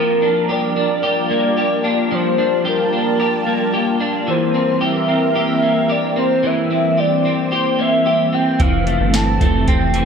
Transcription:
Already playing: F3 G3 A#3 D4 F4 G4 A#4
0.22 D4
0.49 G4 D5
0.76 D4
1.03 G4 D5
1.30 A#3
1.57 G4
1.84 D4
2.11 F3 C5 A5
2.38 D4
2.65 G4 A#4
2.93 D4
3.20 G4
3.47 A#3
3.73 G4
4.00 D4
4.26 E3 C4 A#4 C5
4.54 C4
4.81 G4 E5
5.08 C4
5.36 G4 E5
5.62 A#3
5.89 G4 D5
6.16 C4 C5
6.43 E3 C5 E5
6.71 C4
6.98 G4 D5
7.25 C4
7.52 G4 C5
7.79 A#3 E5
8.06 G4
8.33 C4 G5
8.59 F1 C3 E3 A3 A4 F5, kick, closed hi-hat
8.87 A3, closed hi-hat
9.00 G1
9.14 C4 A5, snare, closed hi-hat
9.41 F1 A3, kick, closed hi-hat
9.68 C4 G5, kick, closed hi-hat
9.94 E3, closed hi-hat

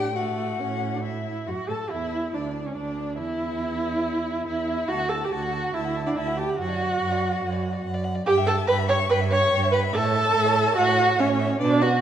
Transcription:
Already playing: A2 G4 G5
0.16 A3 F#4 F#5
0.60 A2 C#4
0.94 D4
1.04 E4 E5
1.47 F#2 F#4 F#5
1.69 A2 A4 A5
1.90 E2 E4 E5
2.34 D2 D4 D5
2.66 C#2 C#4 C#5
2.75 D2 D4 D5
3.18 E2 E4 E5
4.47 E2 E4 E5
4.88 D2 F#4 F#5 A5
5.00 F#5
5.09 A4 A5
5.21 G4 F#5
5.32 D2 F#4 F#5 A5
5.43 F#5
5.53 A5
5.64 F#5
5.74 D2 E4 E5 A5
5.84 F#5
5.95 A5
6.07 D4 D5 F#5
6.17 D2 E4 E5 A5
6.27 F#5
6.37 G4 G5 A5
6.50 F#5
6.59 F#2 F#4 F#5
6.69 D5
6.81 F#5
6.91 D5
7.01 F#2 F#5
7.12 D5
7.22 F#5
7.32 D5
7.43 F#2 F#5
7.53 D5
7.63 F#5
7.73 D5
7.84 F#2 F#5
7.94 D5
8.05 F#5
8.15 D5
8.26 G2 G4 G5
8.38 E5
8.47 A4 G5 A5
8.58 E5
8.67 G2 B4 G5 B5
8.79 E5
8.89 C#5 G5 C#6
9.00 E5
9.10 G2 B4 G5 B5
9.20 E5
9.31 C#5 G5 C#6
9.41 E5
9.53 G2 G5
9.63 E5
9.72 B4 G5 B5
9.84 E5
9.93 A2 A4 E5 A5
10.05 C#5
10.15 E5
10.25 C#5
10.36 A2 E5
10.46 C#5
10.57 E5
10.67 C#5
10.77 A2 F#4 E5 F#5
10.88 C#5
10.99 E5
11.08 C#5
11.18 A2 C#4 C#5 E5
11.28 C#5
11.40 E5
11.51 C#5
11.60 B2 D4 B4 D5
11.71 D5
11.81 F#4 B4 F#5
11.92 D5

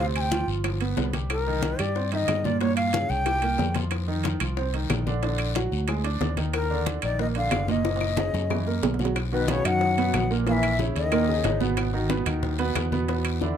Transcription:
Already playing: D2
0.00 C3 C4
0.15 G#5, high bongo, high conga, high timbale, claves
0.21 G5
0.31 F3 F4, high bongo, high conga, high timbale, low timbale, short guiro
0.48 G1, high bongo, high conga, short guiro
0.64 F3 F4, high bongo, high conga, high timbale, long guiro, claves
0.80 B3 B4, high bongo, high conga, high timbale
0.97 C2, high bongo, low bongo, high conga, low timbale, short guiro
1.13 G3 G4, high conga, high timbale, short guiro
1.30 A#4, high bongo, high conga, high timbale, long guiro, claves
1.47 D#3 D#4, high conga
1.62 high bongo, high conga, high timbale, low timbale, short guiro
1.79 G2 G3 G4 D5, high conga, high timbale, short guiro, claves
1.95 C4 C5, high bongo, high conga, long guiro
2.12 D#3 D#4 E5, high conga, high timbale
2.17 D#5
2.28 G2, high bongo, low bongo, high conga, high timbale, low timbale, short guiro, claves
2.44 A#2 A#3 D5, high conga, short guiro
2.61 A#2 A#3 C#5, high bongo, high conga, high timbale, long guiro
2.76 F5, high bongo, high conga, high timbale, claves
2.93 C#3 C#4, high bongo, high conga, high timbale, low timbale, short guiro
3.10 C2 G5, high bongo, high conga, short guiro
3.25 G3 G4, high bongo, high conga, high timbale, long guiro, claves
3.42 A#3 A#4, high bongo, high conga, high timbale
3.58 F2, low bongo, high conga, low timbale, short guiro
3.75 F3 F4, low bongo, high conga, high timbale, short guiro
3.91 high bongo, high conga, high timbale, long guiro, claves
4.08 D#3 D#4, high conga
4.24 high bongo, high conga, high timbale, low timbale, short guiro
4.40 C2 F3 F4, high conga, high timbale, short guiro, claves
4.57 C4 C5, high bongo, high conga, long guiro
4.74 D#3 D#4, high conga, high timbale
4.90 A#1, high bongo, low bongo, high conga, high timbale, low timbale, short guiro, claves
5.07 D3 D4, high conga, short guiro
5.23 D3 D4, high bongo, high conga, high timbale, long guiro
5.38 high bongo, high conga, high timbale, claves
5.55 F#3 F#4, high bongo, high conga, high timbale, low timbale, short guiro
5.72 D2, high bongo, high conga, short guiro
5.88 G#3 G#4, high bongo, high conga, high timbale, long guiro, claves
6.04 D4 D5, high bongo, high conga, high timbale
6.21 D#2, high bongo, low bongo, high conga, low timbale, short guiro
6.37 D#3 D#4, high conga, high timbale, short guiro
6.53 A#4, high bongo, high conga, high timbale, long guiro, claves
6.70 D3 D4, high conga
6.86 high bongo, high conga, high timbale, low timbale, short guiro
7.02 A#1 D#3 D#4 D5, high conga, high timbale, short guiro, claves
7.19 A#3 A#4 D#5, high bongo, high conga, long guiro
7.35 D3 D4 F5, high conga, high timbale
7.51 F#1, high bongo, low bongo, high conga, high timbale, low timbale, short guiro, claves
7.68 A#2 A#3 D#5, high conga, short guiro
7.84 A#2 A#3, high bongo, high conga, high timbale, long guiro
7.96 high timbale
8.01 high bongo, high conga, claves
8.17 C#3 C#4, high bongo, high conga, high timbale, short guiro
8.33 F#2, low bongo, high conga, short guiro
8.50 E3 E4, low bongo, high conga, low timbale, long guiro, claves
8.67 A#3 A#4, low bongo, high conga
8.83 B1, low bongo, high conga, low timbale, short guiro
8.94 low timbale
8.99 F#3 F#4, low bongo, high conga, short guiro
9.05 low timbale
9.16 high bongo, high timbale, long guiro, claves
9.32 B2 D#3 D#4 F#4 B4, high conga
9.48 B2 C#3 B3 B4 C#5, high bongo, high conga, high timbale, short guiro
9.65 F#2 D#3 F#3 D#4 F#4 F#5, high conga, low conga, high timbale, short guiro, claves
9.81 high bongo, high conga, long guiro
9.97 B2 B3 B4, high conga, high timbale
10.14 A#1, high bongo, low bongo, high conga, high timbale, short guiro, claves
10.30 A#2 A#3 A#4, short guiro
10.47 A#2 E3 A#3 A#4 F5, high bongo, high conga, high timbale, long guiro
10.53 E5
10.63 high conga, high timbale, claves
10.79 C#3 C#4 E4, high bongo, high conga, short guiro
10.95 D#2 D#3 D#5, high bongo, high conga, high timbale, short guiro
11.12 A#2 A#3 A#4, high bongo, high conga, high timbale, long guiro, claves
11.28 C#3 C#4 D#4, high bongo, high conga
11.44 G#1 C#3 C#4 D#4, high bongo, low bongo, high conga, high timbale, low timbale, short guiro
11.60 B2 B3 B4, high bongo, high conga, short guiro
11.77 high bongo, high timbale, long guiro, claves
11.93 D#3 D#4 F#4, high conga
12.09 B2 B3 B4, high bongo, high conga, high timbale, short guiro
12.26 D#2 D#3 D#4 F#4, high conga, low conga, high timbale, short guiro, claves
12.43 high bongo, high conga, low conga, long guiro
12.59 B2 B3 B4, high conga, high timbale
12.75 E2, high bongo, low bongo, high conga, high timbale, low timbale, short guiro, claves
12.92 B2 B3 B4, high conga, short guiro
13.08 B2 B3 B4, high bongo, high timbale, long guiro
13.25 high conga, high timbale, claves
13.41 D3 D4 E4, high bongo, high conga, short guiro

